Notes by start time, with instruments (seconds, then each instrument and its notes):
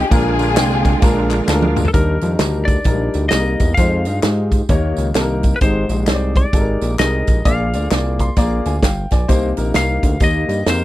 0.01 string section G4
0.08 analog synth bass A#1, grand piano A#2 G#3 D4 F4 A#4, tonewheel organ D3 G#3 A#3 F4, string section D4 F4 G#4, kick, ride, tambourine
0.39 grand piano G#3 D4 F4 A#4, ride, tambourine
0.56 analog synth bass C2, grand piano G#3 D4 F4 G5, snare, clap, ride, tambourine
0.85 kick, ride, tambourine
1.02 analog synth bass A#1, grand piano G#3 D4 F4 A#4, kick, snare, ride, tambourine
1.30 clap, ride, tambourine
1.47 analog synth bass D2, grand piano G#3 D4 F4 A4, snare, clap, tambourine
1.53 grand piano A#4
1.62 high tom
1.76 mid tom, tambourine
1.85 electric slide guitar A4, floor tom
1.94 analog synth bass D#2, grand piano D#3 G3 D4 D#4 A#4, electric slide guitar A#4, kick, closed hi-hat, tambourine
2.21 analog synth bass F2, grand piano G3 D4 D#4 A#4, closed hi-hat, tambourine
2.39 analog synth bass D2, grand piano G3 D4 D#4 A#4, snare, clap, closed hi-hat, tambourine
2.65 electric slide guitar D5, kick, closed hi-hat, tambourine
2.84 analog synth bass A#1, grand piano F3 D4 D#4 A#4, kick, closed hi-hat, tambourine
2.92 grand piano G3
3.14 analog synth bass D2, closed hi-hat, tambourine
3.29 analog synth bass C2, grand piano G3 A#3 D#4 G#4, electric slide guitar D#5, snare, clap, closed hi-hat, tambourine
3.38 grand piano A#4
3.59 analog synth bass E2, kick, closed hi-hat, tambourine
3.74 analog synth bass F2, grand piano G#3 D#4 F4, electric slide guitar F5, kick, closed hi-hat, tambourine
3.78 grand piano C5
4.05 analog synth bass G2, grand piano G#3 D#4 F4 D#5, closed hi-hat, tambourine
4.23 analog synth bass G#2, grand piano G#3 D#4 F4 G4, snare, clap, closed hi-hat, tambourine
4.52 kick, closed hi-hat, tambourine
4.69 analog synth bass D#2, grand piano D#3 A#3 D#4 G4 C#5, kick, closed hi-hat, tambourine
4.97 analog synth bass C#2, closed hi-hat, tambourine
5.15 analog synth bass C2, grand piano A#3 D#4 G4 A4, snare, clap, closed hi-hat, tambourine
5.21 grand piano A#4
5.43 kick, closed hi-hat, tambourine
5.56 electric slide guitar B4
5.61 analog synth bass G#1, grand piano G#2 G#3 D#4 G4 C5, electric slide guitar C5, kick, closed hi-hat, tambourine
5.89 analog synth bass A#1, grand piano G#3 D#4 G4 C5, closed hi-hat, tambourine
6.07 analog synth bass C2, grand piano G#3 D#4 G4 C#5, snare, clap, closed hi-hat, tambourine
6.13 grand piano D5
6.36 electric slide guitar D5, kick, closed hi-hat, tambourine
6.53 analog synth bass G#1, grand piano G#3 D#4 G4 A4, kick, closed hi-hat, tambourine
6.59 grand piano A#4
6.81 analog synth bass A#1, closed hi-hat, tambourine
6.99 analog synth bass C2, grand piano G#3 D#4 G4 G#4, electric slide guitar D#5, snare, clap, closed hi-hat, tambourine
7.05 grand piano A#4
7.27 analog synth bass A#1, kick, closed hi-hat, tambourine
7.45 analog synth bass A#1, grand piano A#2 A#3 F4 G#4 D5, electric slide guitar F5, kick, closed hi-hat, tambourine
7.73 analog synth bass D2, grand piano A#3 F4 G#4 D5, closed hi-hat, tambourine
7.91 analog synth bass C2, grand piano A#3 F4 G#4 D5, snare, clap, closed hi-hat, tambourine
8.19 grand piano C6, kick, closed hi-hat, tambourine
8.36 analog synth bass A#1, grand piano A#3 F4 G#4 D5 A#5, kick, snare, closed hi-hat, tambourine
8.65 analog synth bass D2, grand piano F5 G#5, closed hi-hat, tambourine
8.82 analog synth bass G1, grand piano F5 G5, kick, snare, clap, closed hi-hat, tambourine
9.10 analog synth bass B1, grand piano D5 G#5, kick, snare, closed hi-hat, tambourine
9.28 analog synth bass C2, grand piano C3 A#3 D#4 G4 C5, kick, closed hi-hat, tambourine
9.57 analog synth bass A#1, grand piano A#3 D#4 G4 A#4, closed hi-hat, tambourine
9.74 analog synth bass C2, grand piano A#3 D#4 G4 A#4, electric slide guitar F5, snare, clap, closed hi-hat, tambourine
10.03 analog synth bass D2, kick, closed hi-hat, tambourine
10.20 analog synth bass D#2, grand piano A#3 D#4 G4 D#5, electric slide guitar D#5, kick, closed hi-hat, tambourine
10.48 analog synth bass G2, closed hi-hat, tambourine
10.66 analog synth bass F2, grand piano A#3 D#4 G4 G#4, electric slide guitar C5, snare, clap, closed hi-hat, tambourine
10.73 grand piano A#4